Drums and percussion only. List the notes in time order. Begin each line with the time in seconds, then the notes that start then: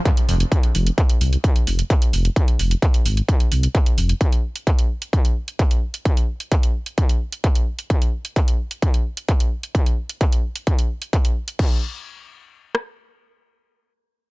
0.05 kick, closed hi-hat
0.17 closed hi-hat
0.29 open hi-hat
0.40 closed hi-hat
0.52 kick, closed hi-hat
0.63 closed hi-hat
0.75 open hi-hat
0.87 closed hi-hat
0.98 kick, closed hi-hat
1.10 closed hi-hat
1.21 open hi-hat
1.33 closed hi-hat
1.44 kick, closed hi-hat
1.56 closed hi-hat
1.67 open hi-hat
1.79 closed hi-hat
1.90 kick, closed hi-hat
2.02 closed hi-hat
2.13 open hi-hat
2.25 closed hi-hat
2.36 kick, closed hi-hat
2.48 closed hi-hat
2.59 open hi-hat
2.71 closed hi-hat
2.82 kick, closed hi-hat
2.94 closed hi-hat
3.06 open hi-hat
3.17 closed hi-hat
3.29 kick, closed hi-hat
3.40 closed hi-hat
3.52 open hi-hat
3.63 closed hi-hat
3.75 kick, closed hi-hat
3.86 closed hi-hat
3.98 open hi-hat
4.09 closed hi-hat
4.21 kick, closed hi-hat
4.32 closed hi-hat
4.56 closed hi-hat
4.67 kick, closed hi-hat
4.79 closed hi-hat
5.02 closed hi-hat
5.13 kick, closed hi-hat
5.25 closed hi-hat
5.48 closed hi-hat
5.59 kick, closed hi-hat
5.71 closed hi-hat
5.94 closed hi-hat
6.05 kick, closed hi-hat
6.17 closed hi-hat
6.40 closed hi-hat
6.52 kick, closed hi-hat
6.63 closed hi-hat
6.86 closed hi-hat
6.98 kick, closed hi-hat
7.09 closed hi-hat
7.32 closed hi-hat
7.44 kick, closed hi-hat
7.55 closed hi-hat
7.79 closed hi-hat
7.90 kick, closed hi-hat
8.02 closed hi-hat
8.25 closed hi-hat
8.36 kick, closed hi-hat
8.48 closed hi-hat
8.71 closed hi-hat
8.82 kick, closed hi-hat
8.94 closed hi-hat
9.17 closed hi-hat
9.28 kick, closed hi-hat
9.40 closed hi-hat
9.63 closed hi-hat
9.75 kick, closed hi-hat
9.86 closed hi-hat
10.09 closed hi-hat
10.21 kick, closed hi-hat
10.32 closed hi-hat
10.56 closed hi-hat
10.67 kick, closed hi-hat
10.79 closed hi-hat
11.02 closed hi-hat
11.13 kick, closed hi-hat
11.25 closed hi-hat
11.48 closed hi-hat
11.59 kick, crash
12.75 cross-stick